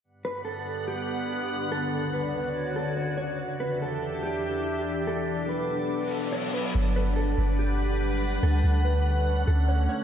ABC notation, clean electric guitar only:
X:1
M:4/4
L:1/8
Q:1/4=143
K:Glyd
V:1 name="Clean electric guitar"
z B A2 G4 | A2 B3 A c c | z B A2 G4 | A2 B4 c B |
z B A2 G4 | A2 B3 A c c |]